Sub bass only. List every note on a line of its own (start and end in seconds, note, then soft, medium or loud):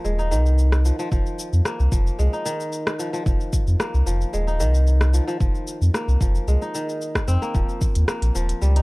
0.05 0.33 D#1 medium
0.31 0.91 C2 medium
1.12 1.21 F1 loud
1.53 1.61 F2 medium
1.80 1.88 C2 loud
1.92 2.10 F1 loud
2.19 2.28 C2 medium
3.26 3.36 F1 loud
3.67 3.76 F2 medium
3.94 4.02 C2 medium
4.06 4.25 F1 medium
4.34 4.62 D#1 medium
4.60 5.20 C2 medium
5.40 5.50 F1 medium
5.81 5.90 F2 medium
6.08 6.16 C2 loud
6.21 6.39 F1 medium
6.47 6.57 C2 medium
7.28 7.37 F2 medium
7.55 7.64 D#1 loud
7.96 8.04 D#2 loud
8.22 8.31 A#1 medium
8.35 8.53 D#1 medium
8.62 8.82 C#2 medium